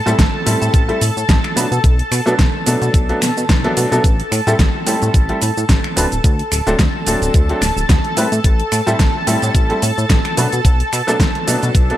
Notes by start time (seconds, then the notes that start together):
Already playing: A4 A5
0.06 A2 G3 A3 C4 E4 A4, closed hi-hat, shaker
0.19 A1, kick, snare, closed hi-hat, shaker
0.46 A2 G3 A3 C4 E4 A4, open hi-hat, shaker
0.62 A2, closed hi-hat, shaker
0.74 A1, kick, closed hi-hat, shaker
0.88 G3 A3 C4 E4 A4, closed hi-hat
1.01 A2, open hi-hat, shaker
1.17 A2, shaker
1.29 A1, kick, snare, closed hi-hat, shaker
1.44 finger snap, closed hi-hat
1.56 B2 F#3 A3 B3 D4 B4, open hi-hat, shaker
1.72 B2, closed hi-hat, shaker
1.84 B1, kick, closed hi-hat, shaker
1.99 closed hi-hat
2.12 B2, finger snap, open hi-hat, shaker
2.26 B2 F#3 A3 B3 D4 A4, closed hi-hat, shaker
2.39 B1, kick, snare, closed hi-hat, shaker
2.66 B2 F#3 A3 B3 D4 A4, open hi-hat, shaker
2.82 B2, closed hi-hat, shaker
2.94 B1, kick, closed hi-hat, shaker
3.09 F#3 A3 B3 D4 A4, closed hi-hat
3.22 B2, finger snap, snare, open hi-hat, shaker
3.37 B2, shaker
3.49 B1, kick, snare, closed hi-hat, shaker
3.64 F#3 A3 B3 D4 A4, closed hi-hat
3.77 B2, open hi-hat, shaker
3.91 B2 F#3 A3 B3 D4 A4, closed hi-hat, shaker
4.04 A1 A4 A5, kick, closed hi-hat, shaker
4.20 closed hi-hat
4.32 A2, finger snap, open hi-hat, shaker
4.47 A2 G3 A3 C4 E4 A4, closed hi-hat, shaker
4.59 A1, kick, snare, closed hi-hat, shaker
4.86 A2 G3 A3 C4 E4 A4, open hi-hat, shaker
5.02 A2, closed hi-hat, shaker
5.14 A1, kick, closed hi-hat, shaker
5.29 G3 A3 C4 E4 A4, closed hi-hat
5.42 A2, open hi-hat, shaker
5.57 A2, shaker
5.69 A1, kick, snare, closed hi-hat, shaker
5.84 finger snap, closed hi-hat
5.96 D1 F#3 A3 C4 D4 B4, open hi-hat, shaker
6.12 D1, closed hi-hat, shaker
6.24 D2, kick, closed hi-hat, shaker
6.39 closed hi-hat
6.52 D1, finger snap, open hi-hat, shaker
6.66 D1 F#3 A3 C4 D4 A4, closed hi-hat, shaker
6.79 D2, kick, snare, closed hi-hat, shaker
7.07 D1 F#3 A3 C4 D4 A4, open hi-hat, shaker
7.22 D1, closed hi-hat, shaker
7.34 D2, kick, closed hi-hat, shaker
7.49 F#3 A3 C4 D4 A4, closed hi-hat
7.62 D1, finger snap, snare, open hi-hat, shaker
7.76 D1, shaker
7.89 D2, kick, snare, closed hi-hat, shaker
8.04 closed hi-hat
8.17 A2 G3 A3 C4 E4 B4, open hi-hat, shaker
8.32 A2, closed hi-hat, shaker
8.44 A1, kick, closed hi-hat, shaker
8.60 closed hi-hat
8.72 A2, finger snap, open hi-hat, shaker
8.86 A2 G3 A3 C4 E4 A4, closed hi-hat, shaker
8.99 A1, kick, snare, closed hi-hat, shaker
9.27 A2 G3 A3 C4 E4 A4, open hi-hat, shaker
9.42 A2, closed hi-hat, shaker
9.55 A1, kick, closed hi-hat, shaker
9.69 G3 A3 C4 E4 A4, closed hi-hat
9.82 A2, open hi-hat, shaker
9.98 A2, shaker
10.10 A1, kick, snare, closed hi-hat, shaker
10.25 finger snap, closed hi-hat
10.37 B2 F#3 A3 B3 D4 B4, open hi-hat, shaker
10.52 B2, closed hi-hat, shaker
10.65 B1, kick, closed hi-hat, shaker
10.80 closed hi-hat
10.93 B2, finger snap, open hi-hat, shaker
11.07 B2 F#3 A3 B3 D4 A4, closed hi-hat, shaker
11.20 B1, kick, snare, closed hi-hat, shaker
11.35 closed hi-hat
11.47 B2 F#3 A3 B3 D4 A4, open hi-hat, shaker
11.63 B2, closed hi-hat, shaker
11.75 B1, kick, closed hi-hat, shaker
11.90 F#3 A3 B3 D4 A4, closed hi-hat